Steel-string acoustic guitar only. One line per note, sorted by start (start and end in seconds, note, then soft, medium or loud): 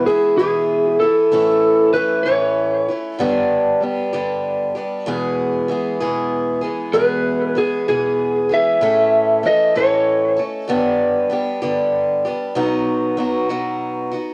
0.07 0.38 E3 medium
0.07 0.38 G#3 medium
0.07 0.38 B3 medium
0.07 0.38 E4 medium
0.39 1.02 E2 soft
0.39 1.02 B2 medium
0.39 1.02 E3 medium
0.39 1.01 G#3 medium
0.39 1.01 B3 medium
0.39 1.00 E4 medium
1.01 1.31 E3 soft
1.01 1.33 B3 soft
1.01 1.32 E4 soft
1.31 1.94 A2 medium
1.31 1.92 E3 medium
1.31 1.94 A3 medium
1.31 1.94 C#4 medium
1.31 1.95 E4 medium
1.94 2.25 E3 medium
1.94 2.25 A3 medium
1.94 2.25 C#4 medium
1.94 2.24 E4 medium
2.25 2.89 A2 soft
2.25 2.89 E3 medium
2.25 2.88 A3 medium
2.25 2.88 C#4 medium
2.25 2.87 E4 medium
2.89 3.20 A3 soft
2.89 3.20 C#4 soft
2.89 3.20 E4 soft
3.19 3.81 G2 medium
3.19 3.82 D3 medium
3.19 3.79 G3 medium
3.19 3.82 B3 medium
3.19 3.81 D4 medium
3.19 3.82 G4 medium
3.80 4.12 G3 medium
3.80 4.13 B3 medium
3.80 4.12 D4 medium
3.80 4.11 G4 medium
4.13 4.76 G2 medium
4.13 4.76 D3 medium
4.13 4.76 G3 medium
4.13 4.77 B3 medium
4.13 4.75 D4 medium
4.13 4.74 G4 medium
4.75 5.07 G3 soft
4.75 5.07 B3 medium
4.75 5.07 D4 medium
4.75 5.07 G4 medium
5.06 5.69 E2 medium
5.06 5.69 B2 medium
5.06 5.68 E3 medium
5.06 5.69 G#3 medium
5.06 5.70 B3 medium
5.06 5.71 G#4 medium
5.68 6.00 E3 medium
5.68 6.00 G#3 medium
5.68 6.00 B3 medium
5.68 5.99 G#4 medium
6.01 6.64 E2 medium
6.01 6.64 B2 medium
6.01 6.64 E3 medium
6.01 6.63 G#3 medium
6.01 6.61 B3 medium
6.01 6.60 G#4 medium
6.61 6.93 E3 soft
6.61 6.93 G#3 soft
6.61 6.94 B3 soft
6.61 6.93 G#4 medium
6.93 7.56 E2 medium
6.93 7.57 B2 medium
6.93 7.55 E3 medium
6.93 7.55 G#3 medium
6.93 7.56 B3 medium
6.93 7.57 G#4 medium
7.55 7.87 E3 medium
7.55 7.88 G#3 medium
7.55 7.87 B3 medium
7.55 7.87 G#4 medium
7.88 8.52 E2 soft
7.88 8.51 B2 medium
7.88 8.51 E3 soft
7.88 8.50 G#3 medium
7.88 8.50 B3 medium
7.88 8.48 G#4 medium
8.49 8.80 E3 soft
8.49 8.82 G#3 soft
8.49 8.82 B3 soft
8.49 8.81 G#4 medium
8.81 9.44 A2 medium
8.81 9.42 E3 medium
8.81 9.42 A3 medium
8.81 9.43 C#4 medium
8.81 9.45 A4 medium
9.43 9.75 E3 medium
9.43 9.75 A3 medium
9.43 9.74 C#4 medium
9.43 9.74 A4 medium
9.75 10.39 A2 soft
9.75 10.38 E3 medium
9.75 10.38 A3 medium
9.75 10.37 C#4 medium
9.75 10.35 A4 medium
10.37 10.69 A3 soft
10.37 10.69 C#4 soft
10.37 10.68 A4 medium
10.68 11.31 G2 medium
10.68 11.31 D3 medium
10.68 11.29 G3 medium
10.68 11.31 B3 medium
10.68 11.31 D4 medium
10.68 11.32 G4 medium
11.30 11.62 G3 medium
11.30 11.62 B3 medium
11.30 11.61 D4 medium
11.30 11.61 G4 medium
11.62 12.26 G2 medium
11.62 12.25 D3 medium
11.62 12.25 G3 medium
11.62 12.26 B3 medium
11.62 12.25 D4 medium
11.62 12.24 G4 medium
12.25 12.55 G3 soft
12.25 12.55 B3 soft
12.25 12.56 D4 medium
12.25 12.56 G4 medium
12.55 13.18 B2 medium
12.55 13.16 F#3 medium
12.55 13.17 B3 medium
12.55 13.18 D#4 medium
12.55 13.18 F#4 medium
13.17 13.49 F#3 medium
13.17 13.49 B3 medium
13.17 13.49 D#4 medium
13.17 13.48 F#4 medium
13.49 14.13 B2 medium
13.49 14.13 F#3 medium
13.49 14.12 B3 medium
13.49 14.12 D#4 medium
13.49 14.10 F#4 medium
14.11 14.34 B3 soft
14.11 14.34 D#4 soft
14.11 14.34 F#4 medium